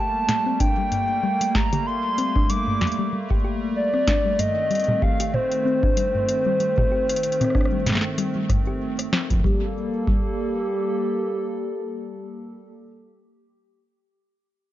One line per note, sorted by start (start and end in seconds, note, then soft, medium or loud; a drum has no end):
0.00 4.35 G3 medium
0.00 9.40 A3 medium
0.00 4.35 A#3 medium
0.00 0.11 G4 medium
0.00 0.60 A5 loud
0.29 snare loud
0.29 closed hi-hat medium
0.29 mid tom medium
0.46 0.57 C4 medium
0.60 0.77 D4 medium
0.60 1.56 G5 loud
0.60 kick loud
0.60 closed hi-hat medium
0.78 0.91 G3 medium
0.92 1.06 G2 medium
0.92 closed hi-hat medium
1.23 1.37 G3 loud
1.41 1.52 G3 medium
1.41 closed hi-hat medium
1.55 1.69 G4 medium
1.55 1.88 A#5 loud
1.55 kick loud
1.55 snare loud
1.73 1.83 G4 medium
1.73 closed hi-hat medium
1.73 mid tom medium
1.86 2.51 C6 loud
2.18 2.32 C4 medium
2.18 closed hi-hat medium
2.36 2.49 D4 medium
2.36 kick loud
2.50 2.66 G3 medium
2.50 3.13 D6 loud
2.50 closed hi-hat medium
2.67 2.78 G2 medium
2.81 snare loud
2.81 closed hi-hat soft
2.81 mid tom medium
2.87 closed hi-hat soft
2.92 closed hi-hat soft
2.99 3.10 G3 loud
3.13 3.27 G3 medium
3.30 3.41 G4 medium
3.30 kick loud
3.44 3.58 G4 medium
3.76 4.41 D5 loud
3.94 4.05 C4 medium
3.94 cross-stick soft
4.08 4.24 D4 medium
4.08 kick loud
4.08 snare loud
4.08 closed hi-hat medium
4.25 4.38 G3 medium
4.39 4.53 G2 medium
4.39 9.40 D#3 medium
4.39 9.40 C4 medium
4.39 5.04 D#5 loud
4.39 closed hi-hat medium
4.71 4.85 G3 loud
4.71 closed hi-hat soft
4.75 closed hi-hat soft
4.80 closed hi-hat soft
4.84 closed hi-hat soft
4.88 4.99 G3 medium
4.88 mid tom loud
5.02 5.16 G4 medium
5.02 5.35 F5 loud
5.02 kick loud
5.20 5.31 G4 medium
5.20 closed hi-hat medium
5.34 8.81 C5 loud
5.34 mid tom medium
5.52 closed hi-hat medium
5.65 5.79 C4 medium
5.83 5.96 D4 medium
5.83 kick loud
5.97 6.14 G3 medium
5.97 closed hi-hat medium
6.15 6.26 G2 medium
6.29 closed hi-hat medium
6.46 6.57 G3 loud
6.60 6.74 G3 medium
6.60 closed hi-hat medium
6.78 6.89 G4 medium
6.78 kick loud
6.78 mid tom loud
6.92 7.06 G4 medium
7.09 closed hi-hat medium
7.16 closed hi-hat medium
7.23 closed hi-hat medium
7.32 closed hi-hat medium
7.41 7.52 C4 medium
7.41 cross-stick soft
7.41 closed hi-hat medium
7.41 mid tom loud
7.44 cross-stick soft
7.50 cross-stick soft
7.55 7.72 D4 medium
7.55 kick loud
7.55 cross-stick soft
7.61 cross-stick soft
7.65 cross-stick medium
7.73 7.86 G3 medium
7.86 8.00 G2 medium
7.86 snare medium
7.86 closed hi-hat medium
7.86 mid tom medium
7.89 snare medium
7.92 snare medium
7.95 snare medium
7.97 snare medium
8.01 snare loud
8.18 8.32 G3 loud
8.18 closed hi-hat medium
8.36 8.47 G3 medium
8.50 8.63 G2 medium
8.50 kick loud
8.50 cross-stick soft
8.50 closed hi-hat medium
8.67 8.80 G4 medium
8.99 cross-stick soft
8.99 closed hi-hat medium
9.13 9.30 C4 medium
9.13 snare loud
9.30 9.41 F3 medium
9.30 kick loud
9.30 closed hi-hat medium
9.34 kick medium
9.40 kick medium
9.44 9.63 G3 medium
9.44 12.73 G3 medium
9.44 12.73 A#3 medium
9.44 9.63 G4 loud
9.44 12.73 A4 medium
9.44 kick loud
10.07 10.27 G3 loud
10.07 12.73 G4 loud
10.07 kick loud